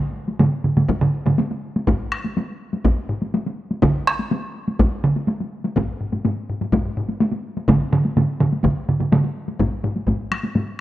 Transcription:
0.28 taiko high
0.39 taiko low-mid, taiko mid, taiko high
0.64 taiko low-mid, taiko mid
0.77 taiko low-mid, taiko mid, taiko high
0.89 taiko, taiko high
1.01 taiko low-mid, taiko mid
1.26 taiko low-mid, taiko mid, taiko high
1.38 taiko high
1.51 taiko high
1.76 taiko high
1.87 taiko, taiko low-mid, taiko high
2.12 taiko rim
2.24 taiko high
2.37 taiko high
2.73 taiko high
2.85 taiko, taiko high
3.09 taiko low-mid
3.22 taiko high
3.34 taiko high
3.46 taiko high
3.71 taiko high
3.82 taiko, taiko mid, taiko high
4.07 taiko rim
4.19 taiko high
4.31 taiko high
4.68 taiko high
4.79 taiko, taiko high
5.04 taiko mid
5.16 taiko high
5.28 taiko high
5.40 taiko high
5.64 taiko high
5.76 taiko, taiko low-mid, taiko high
6.01 taiko low-mid
6.12 taiko low-mid, taiko high
6.25 taiko low-mid, taiko high
6.50 taiko low-mid
6.61 taiko low-mid, taiko high
6.72 taiko, taiko low-mid, taiko high
6.85 taiko low-mid
6.97 taiko low-mid
7.09 taiko high
7.20 taiko high
7.32 taiko high
7.57 taiko high
7.68 taiko, taiko low-mid, taiko mid, taiko high
7.92 taiko low-mid, taiko mid
8.05 taiko high
8.17 taiko low-mid, taiko mid, taiko high
8.40 taiko low-mid, taiko mid
8.52 taiko high
8.64 taiko, taiko low-mid, taiko mid, taiko high
8.89 taiko low-mid, taiko mid
9.00 taiko low-mid, taiko mid, taiko high
9.12 taiko low-mid, taiko mid, taiko high
9.24 taiko high
9.48 taiko high
9.59 taiko, taiko low-mid, taiko high
9.84 taiko low-mid, taiko high
9.96 taiko high
10.07 taiko, taiko low-mid, taiko high
10.31 taiko rim, taiko high
10.43 taiko high
10.55 taiko low-mid, taiko high

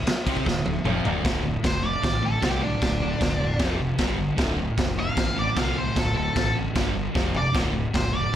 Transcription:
0.07 muted distorted electric guitar stroke, muted fingered electric bass stroke, snare, ride
0.26 C2 C3 C4, kick, ride
0.37 kick
0.46 D1 D2, kick, snare
0.66 D1 D2, high tom
0.84 F1 F2 F3, mid tom
1.05 D1 D2 D3, floor tom
1.24 D1 D2 A2 D3, kick, snare, crash
1.43 D2 A2
1.63 F1 D2 A2 C5, kick, snare, crash
1.82 D2 A2 D5
2.02 A1 D2 A2, kick, snare, crash
2.22 D2 A2 A4
2.41 C2 D2 A2 D3 G4, kick, snare, crash
2.62 D2 A2 D4
2.82 D1 D2 A2, kick, snare, crash
3.02 D2 A2
3.20 E1 D2 A2, kick, snare, crash
3.41 D2 A2
3.59 F1 F2 C3 F3, kick, snare, crash
3.80 F2 C3
3.98 G1 G2 D3 G3, kick, snare, crash
4.18 G2 D3
4.37 D1 D2 A2 D3, kick, snare, crash
4.58 D2 A2
4.77 F1 D2 A2, kick, snare, crash
4.98 D2 A2 F5
5.17 A1 D2 A2, kick, snare, crash
5.37 D2 A2 D5
5.56 C2 D2 A2 D3 F5, kick, snare, crash
5.75 D2 A2 C5
5.95 D1 D2 A2 A4, kick, snare, crash
6.14 D2 A2 A4
6.36 A1 D2 A2, kick, snare, crash
6.56 D2 A2
6.75 G1 G2 D3 G3, kick, snare, crash
6.95 G2 D3
7.15 F1 F2 C3 F3, kick, snare
7.35 F2 C3 D5, floor tom
7.54 D1 D2 A2 D3, kick, snare, crash
7.74 D2 A2
7.93 F1 D2 A2 C5, kick, snare, crash
8.13 D2 A2 D5

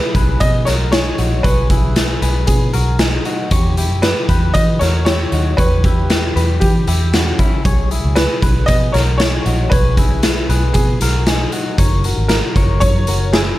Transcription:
Already playing: E4 G#4 B4
0.15 B1 G#4 B4, kick, closed hi-hat
0.40 B2 D#5, kick, closed hi-hat
0.65 B1 F#4 A#4 C#5, snare, closed hi-hat
0.92 D#4 G#4 C#5, snare, closed hi-hat
1.18 A#1 D#4 F#4, closed hi-hat
1.43 B1 G#4 B4 C#5, kick, closed hi-hat
1.70 E4 G#4, kick, closed hi-hat
1.96 snare, closed hi-hat
2.22 B1 G#4 B4, closed hi-hat
2.47 B2 G#4, kick, closed hi-hat
2.73 B1 F#4 A#4, closed hi-hat
2.99 D#4 G#4, snare, closed hi-hat
3.25 D#4 F#4, closed hi-hat
3.51 E2 G4 C#5, kick, closed hi-hat
3.77 E4 G4, closed hi-hat
3.90 F#2
4.02 B4, snare, closed hi-hat
4.29 E2 G4 B4, kick, closed hi-hat
4.54 E3 D#5, kick, closed hi-hat
4.79 E2 F#4 A#4 C#5, snare, closed hi-hat
5.05 E4 G4 C#5, snare, closed hi-hat
5.32 D#2 D#4 F#4, closed hi-hat
5.57 E2 G4 B4 C#5, kick, closed hi-hat
5.84 E4 G4, kick, closed hi-hat
6.10 snare, closed hi-hat
6.36 E2 G4 B4, closed hi-hat
6.60 E3 G4, kick, closed hi-hat
6.87 E2 E4 G4, closed hi-hat
7.13 C#4 F#4, snare, closed hi-hat
7.39 C#4 E4, kick, closed hi-hat
7.65 B1 G#4 C#5, kick, closed hi-hat
7.91 E4 G#4, closed hi-hat
8.04 C#2
8.15 B4, snare, closed hi-hat
8.42 B1 G#4 B4, kick, closed hi-hat
8.66 B2 D#5, kick, closed hi-hat
8.92 B1 F#4 A#4 C#5, snare, closed hi-hat
9.18 D#4 G#4 C#5, snare, closed hi-hat
9.46 A#1 D#4 F#4, closed hi-hat
9.70 B1 G#4 B4 C#5, kick, closed hi-hat
9.97 E4 G#4, kick, closed hi-hat
10.23 snare, closed hi-hat
10.49 B1 G#4 B4, closed hi-hat
10.74 B2 G#4, kick, closed hi-hat
11.01 B1 F#4 A#4, snare, closed hi-hat
11.26 D#4 G#4, snare, closed hi-hat
11.52 D#4 F#4, closed hi-hat
11.78 F#1 A#4 C#5, kick, closed hi-hat
12.04 F#4 A#4, closed hi-hat
12.18 G#1
12.28 A#4, snare, closed hi-hat
12.56 F#1 A#4 C#5, kick, closed hi-hat
12.80 F#2 C#5, kick, closed hi-hat
13.07 F#1 F#4 A#4, closed hi-hat
13.33 E4 G#4, snare, closed hi-hat

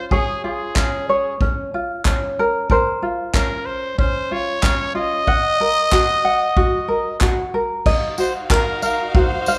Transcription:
Already playing: C#4 F4 C5
0.11 G#4 C#5, kick
0.44 F4 G#4
0.76 C#4, kick, clap
1.09 C#5
1.41 C#4, kick
1.74 F4
2.05 C#4, kick, clap
2.39 A#4
2.70 A#4 C5, kick
3.02 F4
3.34 C#4 A#4, kick, clap
3.66 C5
3.98 C#4 C5, kick
4.31 F4 C#5
4.63 C#4, kick, clap
4.95 F4 D#5
5.27 D#5 F#5, kick
5.60 A#4
5.92 F#4, kick, clap
6.25 F#5
6.57 F#4, kick
6.88 A#4
7.21 F#4, kick, clap
7.54 A#4
7.86 D#4 F#4 D#5 F5, kick, crash
8.18 F#4 C5, tambourine
8.50 A#4, kick, clap
8.82 A#4 F5, tambourine
9.15 F#4 C5, kick
9.46 F5, tambourine

